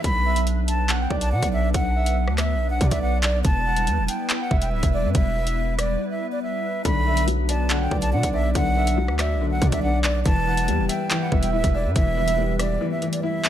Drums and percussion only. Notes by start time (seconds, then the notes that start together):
0.04 kick, closed hi-hat
0.36 closed hi-hat
0.47 closed hi-hat
0.68 closed hi-hat
0.89 clap, closed hi-hat
1.10 kick
1.21 closed hi-hat
1.43 kick, closed hi-hat
1.74 kick, closed hi-hat
2.06 closed hi-hat
2.28 cross-stick
2.38 cross-stick, clap, closed hi-hat
2.81 kick, closed hi-hat
2.91 kick, closed hi-hat
3.23 clap, closed hi-hat
3.45 kick, closed hi-hat
3.77 closed hi-hat
3.87 closed hi-hat
4.08 closed hi-hat
4.30 clap, closed hi-hat
4.51 kick
4.62 closed hi-hat
4.83 kick, closed hi-hat
5.15 kick, closed hi-hat
5.47 closed hi-hat
5.79 cross-stick, closed hi-hat
6.85 kick, closed hi-hat
7.17 closed hi-hat
7.28 closed hi-hat
7.49 closed hi-hat
7.70 clap, closed hi-hat
7.91 kick
8.02 closed hi-hat
8.23 kick, closed hi-hat
8.55 kick, closed hi-hat
8.87 closed hi-hat
9.08 cross-stick
9.19 cross-stick, clap, closed hi-hat
9.62 kick, closed hi-hat
9.72 kick, closed hi-hat
10.04 clap, closed hi-hat
10.26 kick, closed hi-hat
10.57 closed hi-hat
10.68 closed hi-hat
10.89 closed hi-hat
11.11 clap, closed hi-hat
11.32 kick
11.43 closed hi-hat
11.64 kick, closed hi-hat
11.96 kick, closed hi-hat
12.28 closed hi-hat
12.59 cross-stick, closed hi-hat
13.02 closed hi-hat
13.13 closed hi-hat
13.45 clap, closed hi-hat